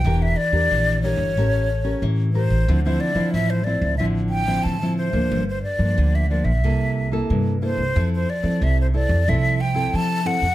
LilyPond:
<<
  \new Staff \with { instrumentName = "Flute" } { \time 4/4 \key d \dorian \tempo 4 = 91 g''16 e''16 d''4 cis''4. r8 c''8~ | c''16 c''16 d''8 e''16 c''16 d''8 e''8 g''8 a''8 c''8~ | c''16 c''16 d''8. e''16 d''16 e''4 r8. c''8~ | c''16 c''16 d''8 e''16 c''16 d''8 e''8 g''8 a''8 fis''8 | }
  \new Staff \with { instrumentName = "Nylon-string guitar" } { \time 4/4 \key d \dorian << { <d' g' bes'>8 r16 <d' g' bes'>8. <d' g' bes'>8 <cis' g' bes'>8 r16 <cis' g' bes'>8. <cis' g' bes'>8 | <f c' e'>16 <f c' e'>8 <f c' e'>8. <f c' e'>8 <f c' e'>8. <f c' e'>8 <f c' e'>8 <f bes d'>16~ | <f bes d'>16 r8 <f bes d'>8. <f bes d'>16 r16 <bes e' a'>8. <bes e' a'>8. <bes e' a'>16 r16 | <c' e' a'>8 r16 <c' e' a'>8. <c' e' a'>8 <c' e' a'>8 r16 <c' e' a'>8. <c' e' a'>16 r16 | } \\ { e4 e4 a4 e4 | d4 a,4 d4 a,4 | g,4 d4 c4 g,4 | f4 c4 f4 c4 | } >> }
  \new Staff \with { instrumentName = "Upright bass" } { \clef bass \time 4/4 \key d \dorian e,,8 r16 e,16 bes,,8. g,,16 a,,4 a,8. a,,16 | d,8 r16 d16 a,,8. d,16 a,,4 d8. d,16 | g,,8 r16 g,16 d,8. bes,,16 c,4 c8. c,16 | f,8 r16 f16 c,8. f,16 c,4 f8. f,16 | }
>>